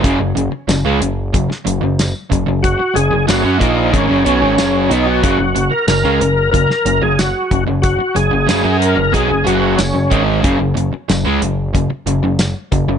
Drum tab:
HH |x-x-x-x-x-x-x-x-|x-x-x-x-x-x-x-x-|x-x-x-x-x-x-x-x-|x-x-x-x-x-x-x-x-|
TB |----x-------x---|----x-------x---|----x-------x---|----x-------x---|
SD |----o----o--o---|----o-------o---|----o----o--o---|----o-------o---|
BD |o-------o-----o-|o-----o-o-------|o-------o-----o-|o-------o-----o-|

HH |x-x-x-x-x-x-x-x-|
TB |----x-------x---|
SD |----o-------o---|
BD |o-------o-----o-|